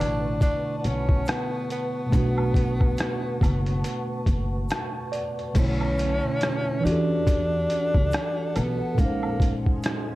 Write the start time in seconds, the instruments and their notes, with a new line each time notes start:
Already playing: tine electric piano B2 D3 A3 E4, ambient pad B4 F#5 A5 C#6
0.00 upright bass A1, tenor saxophone D4, closed hi-hat
0.41 tenor saxophone D4, kick, closed hi-hat, shaker
0.78 tenor saxophone D4
0.84 upright bass B1, tenor saxophone C#4, closed hi-hat, shaker
1.09 kick
1.26 tenor saxophone B3, cross-stick, closed hi-hat, shaker
1.70 tenor saxophone B3, closed hi-hat, shaker
2.06 tine electric piano B2 A3
2.12 upright bass B1, tine electric piano D4, kick, closed hi-hat, shaker
2.17 tine electric piano F#4
2.38 high woodblock
2.54 kick, closed hi-hat, shaker
2.80 kick, high woodblock
2.97 cross-stick, closed hi-hat, shaker
3.41 upright bass F#1, kick, closed hi-hat, high woodblock, shaker
3.66 closed hi-hat
3.84 closed hi-hat, shaker
4.26 upright bass F#1, kick, closed hi-hat, shaker
4.69 tine electric piano A5, cross-stick, closed hi-hat, shaker
5.12 tine electric piano D5, closed hi-hat, shaker
5.39 closed hi-hat
5.54 upright bass B1, tine electric piano B2 D3 A3, ambient pad C#4 E5 A5, tenor saxophone C#4, kick, closed hi-hat, crash, shaker
5.58 tine electric piano E4 C#5
5.81 high woodblock
5.98 closed hi-hat, shaker
6.40 cross-stick, closed hi-hat, shaker
6.80 tine electric piano E3 D4
6.84 upright bass E2, tenor saxophone D4, tine electric piano F#4, ambient pad A4 F#5 A5, closed hi-hat, shaker
6.88 tine electric piano G4 A4
7.27 kick, closed hi-hat, shaker
7.70 closed hi-hat, shaker
7.94 upright bass C#2, kick
8.11 cross-stick, closed hi-hat, shaker
8.56 upright bass B1, tenor saxophone B3, closed hi-hat, high woodblock, shaker
8.94 tine electric piano A#2 G#3, ambient pad C#4 C6, kick, shaker
8.98 upright bass A#1, tenor saxophone A#3, tine electric piano C#4, ambient pad G#5 D#6, closed hi-hat
9.03 tine electric piano D#4 C5
9.23 high woodblock
9.40 kick, closed hi-hat, shaker
9.66 kick
9.83 tenor saxophone G#3, cross-stick, closed hi-hat, shaker